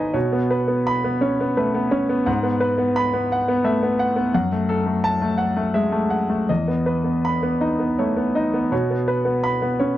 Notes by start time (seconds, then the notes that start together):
Already playing: G#1 G#2 B3 D#4 B4 C#5 D#5 G#5
0.14 B2 C#5
0.32 B3
0.51 B4
0.68 B3
0.87 B5
1.04 B3
1.21 C#4 C#5
1.41 B3
1.57 A3 B4
1.74 B3
1.91 C#4 C#5
2.09 B3
2.26 G#2 F#5
2.43 B3
2.60 B4
2.78 B3
2.96 B5
3.13 B3
3.32 F#5
3.48 B3
3.64 A3 E5
3.83 B3
3.99 F#5
4.16 B3
4.34 F#2 F#5
4.52 A3
4.69 A4
4.86 A3
5.04 A5
5.22 A3
5.38 F#5
5.56 A3
5.74 G#3 E5
5.92 A3
6.10 F#5
6.30 A3
6.49 E2 D#5
6.68 B3
6.86 B4
7.04 B3
7.25 B5
7.43 B3
7.61 D#4 D#5
7.80 B3
7.99 A3 C#5
8.17 B3
8.35 D#4 D#5
8.54 B3
8.72 B2 C#5
8.90 B3
9.08 B4
9.25 B3
9.44 B5
9.62 B3
9.79 C#4 C#5